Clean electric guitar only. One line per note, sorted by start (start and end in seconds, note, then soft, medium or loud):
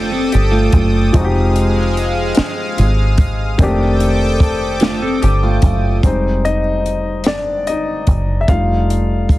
0.00 0.11 A3 medium
0.00 0.11 F4 medium
0.11 0.31 C4 medium
0.11 0.31 A4 medium
0.32 0.52 G4 medium
0.51 1.10 A3 medium
0.51 1.10 F4 medium
4.81 5.00 A3 medium
4.81 5.00 F4 medium
5.02 5.21 C4 medium
5.02 5.21 A4 medium
5.22 5.41 G4 medium
5.43 6.01 A3 medium
5.43 6.01 F4 medium